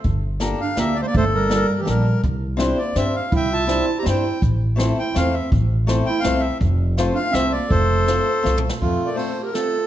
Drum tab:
RD |---------|---------|---------|---------|
HH |x--x--x--|x--x--x--|x--x--x--|x--x--x--|
SD |---o--o--|---o--o--|---o--o--|---o--o--|
T2 |---------|---------|---------|---------|
BD |o--------|o--------|o--------|o--------|

RD |---------|---------|---------|---------|
HH |x--x--x--|x--x--x--|x--x--x--|x--x-----|
SD |---o--o--|---o--o--|---o--o--|---o--o-o|
T2 |---------|---------|---------|-------o-|
BD |o--------|o--------|o--------|o--------|

RD |x--x--x--|
HH |---------|
SD |------o--|
T2 |---------|
BD |o--------|